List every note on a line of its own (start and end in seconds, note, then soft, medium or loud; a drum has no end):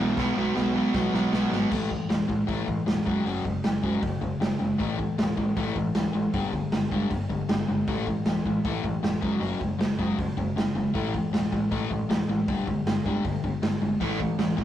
0.00 0.11 B1 medium
0.00 0.17 E2 medium
0.00 0.16 B2 loud
0.00 0.17 E3 medium
0.17 0.30 B1 medium
0.17 0.36 B2 loud
0.17 0.37 F#3 medium
0.17 0.37 B3 loud
0.17 kick loud
0.17 snare medium
0.37 0.49 B1 medium
0.37 0.55 B2 medium
0.37 0.56 F#3 medium
0.37 0.56 B3 medium
0.56 0.81 B1 medium
0.56 0.75 B2 medium
0.56 0.76 F#3 medium
0.56 0.76 B3 medium
0.56 snare medium
0.76 0.94 B2 medium
0.76 0.94 F#3 medium
0.76 0.95 B3 loud
0.94 1.07 B1 medium
0.94 1.13 B2 medium
0.94 1.14 F#3 medium
0.94 1.14 B3 medium
0.94 kick loud
0.94 snare medium
1.13 1.26 B1 medium
1.13 1.32 B2 loud
1.13 1.32 F#3 loud
1.13 1.33 B3 loud
1.13 snare medium
1.33 1.45 B1 medium
1.33 1.50 B2 medium
1.33 1.51 F#3 medium
1.33 1.51 B3 medium
1.33 snare loud
1.51 1.64 G#1 medium
1.51 1.70 B2 medium
1.51 1.70 F#3 medium
1.51 1.70 B3 medium
1.51 snare medium
1.71 1.96 A1 medium
1.71 1.88 A2 medium
1.71 1.89 E3 medium
1.71 1.90 A3 medium
1.71 kick loud
1.71 crash loud
1.89 2.07 A2 medium
1.89 2.08 E3 medium
1.89 kick medium
2.09 2.22 E1 medium
2.09 2.27 A2 medium
2.09 2.27 E3 medium
2.09 snare loud
2.09 open hi-hat medium
2.28 2.41 A1 medium
2.28 2.46 A2 medium
2.28 2.46 E3 medium
2.28 kick medium
2.47 2.61 A1 medium
2.47 2.65 A2 medium
2.47 2.66 E3 medium
2.47 2.66 A3 medium
2.47 kick loud
2.47 open hi-hat medium
2.66 2.80 A1 medium
2.66 2.85 A2 medium
2.66 2.85 E3 medium
2.66 kick medium
2.86 2.99 E1 medium
2.86 3.04 A2 medium
2.86 3.04 E3 medium
2.86 snare loud
2.86 open hi-hat medium
3.06 3.19 F#1 medium
3.06 3.23 F#2 medium
3.06 3.24 C#3 loud
3.06 3.24 F#3 medium
3.06 kick medium
3.25 3.38 F#1 medium
3.25 3.43 F#2 medium
3.25 3.44 C#3 loud
3.25 3.44 F#3 medium
3.25 open hi-hat medium
3.45 3.57 F#1 medium
3.45 3.62 F#2 medium
3.45 3.62 C#3 medium
3.45 kick medium
3.64 3.77 F#1 medium
3.64 3.82 F#2 medium
3.64 3.82 C#3 medium
3.64 snare loud
3.64 open hi-hat medium
3.83 3.96 F#1 medium
3.83 4.01 F#2 medium
3.83 4.01 C#3 medium
3.83 4.02 F#3 loud
3.83 kick medium
4.02 4.15 F#1 medium
4.02 4.20 F#2 medium
4.02 4.20 C#3 medium
4.02 kick loud
4.02 open hi-hat medium
4.21 4.34 F#1 medium
4.21 4.39 F#2 medium
4.21 4.39 C#3 medium
4.21 kick medium
4.40 4.53 F#1 medium
4.40 4.58 F#2 medium
4.40 4.59 C#3 medium
4.40 snare loud
4.40 open hi-hat medium
4.59 4.73 F#1 medium
4.59 4.77 F#2 medium
4.59 4.78 C#3 medium
4.78 5.05 A1 medium
4.78 4.97 A2 medium
4.78 4.98 E3 medium
4.78 4.98 A3 medium
4.78 kick loud
4.78 open hi-hat medium
4.98 5.16 A2 medium
4.98 5.16 E3 medium
4.98 kick medium
5.18 5.31 E1 medium
5.18 5.36 A2 medium
5.18 5.36 E3 medium
5.18 snare loud
5.18 open hi-hat medium
5.37 5.50 A1 medium
5.37 5.55 A2 medium
5.37 5.55 E3 medium
5.37 kick medium
5.57 5.69 A1 medium
5.57 5.75 A2 medium
5.57 5.75 E3 medium
5.57 5.76 A3 loud
5.57 kick loud
5.57 open hi-hat medium
5.76 5.88 A1 medium
5.76 5.94 A2 medium
5.76 5.94 E3 medium
5.76 kick medium
5.95 6.08 D2 medium
5.95 6.12 A2 medium
5.95 6.13 E3 medium
5.95 snare loud
5.95 open hi-hat medium
6.14 6.27 A1 medium
6.14 6.32 A2 medium
6.14 6.32 E3 medium
6.34 6.46 G1 medium
6.34 6.52 G2 medium
6.34 6.52 D3 medium
6.34 6.53 G3 medium
6.34 kick loud
6.34 open hi-hat medium
6.53 6.65 G1 medium
6.53 6.70 G2 medium
6.53 6.71 D3 medium
6.53 kick medium
6.72 6.85 G1 medium
6.72 6.90 G2 medium
6.72 6.90 D3 medium
6.72 snare loud
6.72 open hi-hat medium
6.91 7.04 G1 medium
6.91 7.10 G2 medium
6.91 7.10 D3 medium
6.91 7.10 G3 medium
6.91 kick medium
7.11 7.23 G1 medium
7.11 7.28 G2 medium
7.11 7.29 D3 medium
7.11 kick loud
7.11 open hi-hat medium
7.29 7.42 G1 medium
7.29 7.47 G2 medium
7.29 7.47 D3 medium
7.29 kick medium
7.49 7.62 G1 medium
7.49 7.66 G2 medium
7.49 7.67 D3 medium
7.49 snare loud
7.49 open hi-hat medium
7.68 7.81 G1 medium
7.68 7.86 G2 medium
7.68 7.86 D3 medium
7.87 8.12 A1 medium
7.87 8.06 A2 medium
7.87 8.06 E3 medium
7.87 8.06 A3 medium
7.87 kick loud
7.87 open hi-hat medium
8.07 8.24 A2 medium
8.07 8.25 E3 medium
8.07 kick medium
8.25 8.39 E1 medium
8.25 8.44 A2 medium
8.25 8.44 E3 medium
8.25 snare loud
8.25 open hi-hat medium
8.46 8.58 A1 medium
8.46 8.63 A2 medium
8.46 8.63 E3 medium
8.46 kick medium
8.64 8.77 A1 medium
8.64 8.82 A2 medium
8.64 8.83 E3 medium
8.64 8.83 A3 loud
8.64 kick loud
8.64 open hi-hat medium
8.84 8.96 A1 medium
8.84 9.01 A2 medium
8.84 9.01 E3 medium
8.84 kick medium
9.03 9.15 F1 medium
9.03 9.20 A2 medium
9.03 9.21 E3 medium
9.03 snare loud
9.03 open hi-hat medium
9.21 9.35 F#1 medium
9.21 9.38 F#2 medium
9.21 9.39 C#3 medium
9.21 9.40 F#3 loud
9.21 kick medium
9.40 9.53 F#1 medium
9.40 9.59 F#2 medium
9.40 9.59 C#3 medium
9.40 9.59 F#3 medium
9.40 open hi-hat medium
9.60 9.73 F#1 medium
9.60 9.78 F#2 medium
9.60 9.78 C#3 medium
9.60 kick medium
9.79 9.92 F#1 medium
9.79 9.97 F#2 medium
9.79 9.97 C#3 medium
9.79 snare loud
9.79 open hi-hat medium
9.99 10.11 F#1 medium
9.99 10.17 F#2 medium
9.99 10.17 C#3 medium
9.99 10.17 F#3 medium
9.99 kick medium
10.18 10.31 F#1 medium
10.18 10.36 F#2 medium
10.18 10.36 C#3 medium
10.18 kick loud
10.18 open hi-hat medium
10.37 10.50 F#1 medium
10.37 10.55 F#2 medium
10.37 10.55 C#3 medium
10.37 kick medium
10.56 10.68 F#1 medium
10.56 10.74 F#2 medium
10.56 10.74 C#3 medium
10.56 snare loud
10.56 open hi-hat medium
10.75 10.87 F#1 medium
10.75 10.93 F#2 medium
10.75 10.93 C#3 medium
10.94 11.19 A1 medium
10.94 11.12 A2 medium
10.94 11.13 E3 loud
10.94 11.13 A3 medium
10.94 kick loud
10.94 open hi-hat medium
11.14 11.31 A2 medium
11.14 11.31 E3 medium
11.14 kick medium
11.32 11.45 E1 medium
11.32 11.50 A2 medium
11.32 11.50 E3 medium
11.32 snare loud
11.32 open hi-hat medium
11.52 11.65 A1 medium
11.52 11.70 A2 medium
11.52 11.70 E3 medium
11.52 kick medium
11.71 11.84 A1 medium
11.71 11.89 A2 medium
11.71 11.90 E3 medium
11.71 11.90 A3 medium
11.71 kick loud
11.71 open hi-hat medium
11.91 12.03 A1 medium
11.91 12.08 A2 medium
11.91 12.08 E3 medium
11.91 kick medium
12.09 12.22 D2 medium
12.09 12.27 A2 medium
12.09 12.27 E3 medium
12.09 snare loud
12.09 open hi-hat medium
12.28 12.41 A1 medium
12.28 12.46 A2 medium
12.28 12.47 E3 medium
12.48 12.60 G1 medium
12.48 12.66 G2 medium
12.48 12.66 D3 medium
12.48 12.66 G3 medium
12.48 kick loud
12.48 open hi-hat medium
12.67 12.80 G1 medium
12.67 12.85 G2 medium
12.67 12.85 D3 medium
12.67 kick medium
12.86 12.98 G1 medium
12.86 13.04 G2 medium
12.86 13.04 D3 medium
12.86 snare loud
12.86 open hi-hat medium
13.06 13.18 G1 medium
13.06 13.24 G2 medium
13.06 13.24 D3 loud
13.06 13.24 G3 loud
13.06 kick medium
13.25 13.37 G1 medium
13.25 13.42 G2 medium
13.25 13.43 D3 medium
13.25 kick loud
13.25 open hi-hat medium
13.44 13.56 G1 medium
13.44 13.61 G2 medium
13.44 13.61 D3 medium
13.44 kick medium
13.62 13.75 G1 medium
13.62 13.80 G2 medium
13.62 13.80 D3 medium
13.62 snare loud
13.62 open hi-hat medium
13.82 13.94 G1 medium
13.82 13.99 G2 medium
13.82 13.99 D3 medium
14.00 14.25 A1 medium
14.00 14.18 A2 medium
14.00 14.18 E3 medium
14.00 14.20 A3 medium
14.00 kick loud
14.00 open hi-hat medium
14.19 14.37 A2 medium
14.19 14.37 E3 medium
14.19 kick medium
14.38 14.51 E1 medium
14.38 14.56 A2 medium
14.38 14.57 E3 medium
14.38 snare loud
14.38 open hi-hat medium
14.57 14.64 A1 medium
14.57 14.64 A2 medium
14.57 14.64 E3 medium
14.57 kick medium